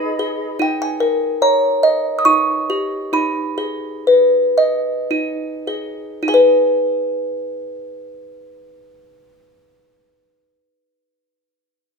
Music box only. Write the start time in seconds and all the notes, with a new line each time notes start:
Already playing: D#4 G#4 B4 D#5
0.19 G#4
0.59 D#4 G5
0.82 G#5
1.00 A#4
1.42 C#5 A#5
1.83 D#5
2.19 D#6
2.25 D#4 C#6
2.70 G4
3.13 D#4 B5
3.58 G#4
4.07 B4
4.58 D#5
5.11 D#4
5.67 G#4
6.23 D#4
6.28 G#4 G#5
6.34 B4